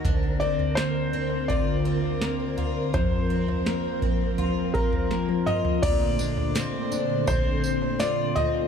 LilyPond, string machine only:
\new Staff \with { instrumentName = "String machine" } { \clef bass \time 4/4 \key bes \major \tempo 4 = 83 << { <c' bes'>1~ | <c' bes'>1 | <d c''>1 | } \\ { <d, d>1 | <f, f>1 | <bes, a>1 | } >> }